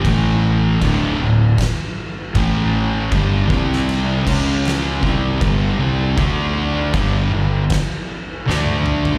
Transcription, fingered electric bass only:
\new Staff \with { instrumentName = "Fingered electric bass" } { \clef bass \time 4/4 \key g \dorian \tempo 4 = 78 a,,4 d,,8 d,,8 r4 a,,4 | g,,8 c,4 cis,4 c,8 g,,8 c,8 | d,4 g,,8 g,,8 r4 d,4 | }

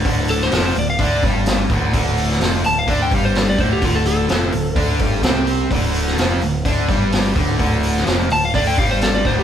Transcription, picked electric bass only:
\new Staff \with { instrumentName = "Picked electric bass" } { \clef bass \time 4/4 \key d \minor \tempo 4 = 127 d,,4 f,,8 d,,8 d,8 g,,4 d,,8 | d,,4 f,,8 d,,8 d,8 g,,4 d,,8 | d,,4 f,,8 d,,8 d,8 g,,8 c,4 | d,,4 f,,8 d,,8 d,8 g,,4 d,,8 |
d,,4 f,,8 d,,8 d,8 g,,4 d,,8 | }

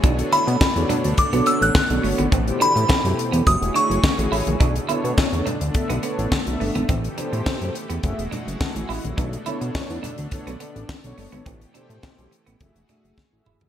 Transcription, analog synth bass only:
\new Staff \with { instrumentName = "Analog synth bass" } { \clef bass \time 4/4 \key b \minor \tempo 4 = 105 b,,8 r16 b,16 r16 e,16 r16 d,16 r16 b,,16 r16 a,,16 r16 b,,16 g,,16 gis,,16 | a,,8 r16 a,16 r16 fis,16 r16 e,16 fis,,16 e,,16 r16 fis,,16 r16 a,,16 a,,16 ais,,16 | b,,8 r16 b,16 r16 e,16 r16 d,16 r16 b,,16 r16 a,,16 r16 b,,16 g,,16 gis,,16 | a,,8 r16 a,16 r16 fis,16 r16 e,16 fis,,16 e,,16 r16 fis,,16 r16 a,,16 a,,16 ais,,16 |
b,,8 r16 b,16 r16 e,16 r16 d,16 r16 b,,16 r16 a,,16 r16 b,,16 g,,16 gis,,16 | a,,8 r16 a,16 r16 b,,16 r16 a,,16 fis,,16 e,,16 r16 fis,,16 r16 a,,16 e,,16 eis,,16 | }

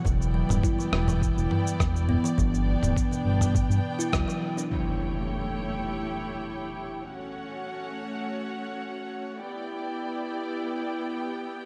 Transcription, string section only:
\new Staff \with { instrumentName = "String section" } { \time 4/4 \key e \dorian \tempo 4 = 103 << { <b e' g''>1 | <b d' g''>1 | <a e' g' g''>1 | <a cis' fis' fis''>1 |
<b e' g' g''>1 | } \\ { d''1~ | d''1 | cis''1 | cis''1 |
d''1 | } >> }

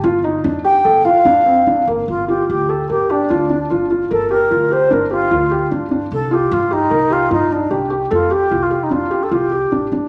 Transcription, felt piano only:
\new Staff \with { instrumentName = "Felt piano" } { \time 5/4 \key g \minor \tempo 4 = 149 f'8 ees'8 d'8 g'8 a'8 f'8 d'8 c'8 d'8 bes8 | r8 f'4 g'8 bes'8 g'8 f'8 d'8 f'8 f'8 | bes'8 g'8 f'8 g'8 d'8 g'8 f'8 g'8 d'8 d'8 | r8 f'4 g'8 bes'8 g'8 f'8 ees'8 g'8 g'8 |
a'8 g'8 f'8 g'8 d'8 g'8 f'8 g'8 d'8 d'8 | }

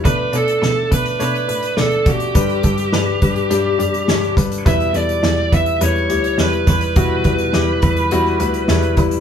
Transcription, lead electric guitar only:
\new Staff \with { instrumentName = "Lead electric guitar" } { \time 4/4 \key e \dorian \tempo 4 = 104 b'8 a'4 b'8 b'4 a'8 g'8~ | g'2.~ g'8 r8 | e''8 d''4 e''8 cis''4 b'8 b'8~ | b'2.~ b'8 r8 | }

